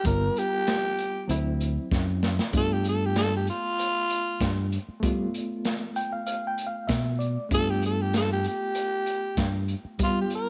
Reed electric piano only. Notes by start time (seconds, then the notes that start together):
0.04 G3 B3 F4
1.27 F#3 C4 E4
2.52 A3 B3
2.57 F4
5.00 A3 B3
5.04 F4
5.96 G5
6.13 F5
6.27 F5
6.47 G5
6.67 F5
6.88 E5
7.19 D5
7.49 A3 B3 F4
9.99 G3 B3 F4